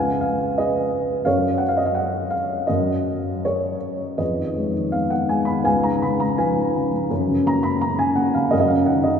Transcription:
Already playing: C#2 B4 F5 G#5
0.21 F5
0.58 G#4 B4 D#5
1.25 F#2 A#4 C#5 F5
1.58 F#5
1.68 F5
1.77 D#5
1.86 F5
1.95 F#5
2.30 F5
2.67 F#2 A#4 D#5
3.45 A#4 C#5
4.17 F2 G#4 B4 D#5
4.38 D#3
4.55 G#3
4.74 D#3
4.92 B3 F5
5.10 D#3 F#5
5.29 G#3 G#5
5.45 D#3 B5
5.64 C#2 B4 F5 G#5
5.83 G#2 A#5
6.02 C#3 B5
6.20 G#2 A#5
6.38 F3 B4 F5 G#5
6.58 G#2
6.75 C#3
6.93 G#2
7.11 F#2
7.29 C#3
7.45 A#3 A#5
7.63 C#3 B5
7.81 C#4 A#5
7.99 C#3 G#5
8.16 A#3 F#5
8.34 C#3 F5
8.51 F#2 A#4 D#5 F5
8.60 D#5
8.68 C#3 F5
8.86 D#3 F#5
9.04 C#3 D#5

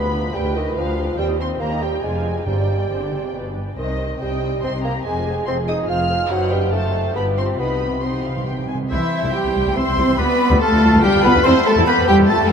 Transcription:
Already playing: D2 B3 B4 B5
0.03 F4 B4
0.13 D4 G4
0.24 F4 B4
0.34 D2 G3 D4 G4 G5
0.45 F4 B4
0.55 D#3 D4 G4 D#5
0.66 F4 B4
0.76 D2 F3 D4 G4 F5
0.87 F4 B4
0.97 D4 G4
1.07 F4 B4
1.18 D#2 G3 C4 C5 G5
1.28 D#4 D#5
1.39 C4 C5 C6
1.50 D#4 D#5
1.60 D#2 A#3 C4 G4 C5 A#5
1.71 D#4 D#5
1.82 G3 C4 C5 G5
1.93 D#4 D#5
2.02 F1 F2 G#3 F4 D5 G#5
2.14 D4 F5
2.26 F4 D5
2.37 D4 F5
2.46 G1 G2 G3 C4 C5 D5 G5
2.59 D4 D5
2.70 C4 C5
2.80 D4 D5
2.90 G1 D3 C4 C5
3.02 D4 D5
3.12 C3 C4 C5
3.24 D4 D5
3.33 G1 B2 B3 B4
3.45 D4 D5
3.55 G2 B3 B4
3.66 D4 D5
3.77 C2 C3 D#3 C4 C5 D#5
3.88 D#4 D#5
3.98 C4 C5
4.09 D#4 D#5
4.19 C2 C3 G3 C4 C5 D#5 G5
4.30 D#4 D#5
4.40 C4 C5
4.51 D#4 D#5
4.62 C2 C3 C4 G4 C5 C6
4.72 D#4 D#5
4.83 A#3 C4 C5 A#5
4.95 D#4 D#5
5.05 F1 F2 G#3 G#4 C5 G#5
5.16 F4 G#4
5.27 G#4 C5
5.38 F4 G#4
5.46 F1 F2 C4 G#4 C5 C6
5.59 F4 G#4
5.68 D#4 G#4 C5 D#6
5.79 F4 G#4
5.88 F1 F2 F4 G#4 C5 F6
6.00 F4 G#4
6.10 G#4 C5
6.21 F4 G#4
6.29 F#1 F#2 F#3 D#4 B4 C5 F#5
6.51 G3 G5
6.73 A3 D#4 A4 C5 A5
7.15 G1 G2 B3 F4 G4 B5
7.37 C4 C6
7.58 C2 C3 B3 D#4 G4 D#5 B5
7.75 C3
7.83 C3
7.98 C3
8.03 C3 C4 D#4 G4 D#5 C6
8.13 C3
8.24 F5
8.28 C3
8.37 C3
8.44 C3 G5
8.51 C3
8.59 C3
8.66 C3 G#5
8.75 C3
8.83 C3
8.90 C2 E3 G3 E4 C5 E5
9.24 C2 G3 E4
9.33 G3 G4 G5
9.45 C2 E3 C4
9.56 C2 G3 E4
9.66 C2 G3 E4
9.76 C2 E3 C4 C5 E5 C6
9.87 C2 G3 E4
9.97 C2 G3 E4
10.08 C2 E3 C4
10.18 D2 G3 B3 F4 B4 D5 B5
10.50 D2 G3 F4
10.60 A3 A4 F5 A5
10.72 D2 F3 D4
10.83 D2 G3 F4
10.93 D2 G3 F4
11.02 D2 F3 G3 D4 G4 G5
11.14 D2 G3 F4
11.23 D2 G3 B3 F4 B4 B5
11.35 D2 F3 D4
11.43 E2 G3 C4 E4 C5 E5 C6
11.65 A3 A4 A5
11.77 E2 G3 E4
11.86 B3 G4 B4 B5
11.98 E2 E3 C4
12.07 E2 G3 E4 G4 G5
12.19 E2 G3 E4
12.28 F2 F3 A3 A4 A5
12.39 F2 A3 D4

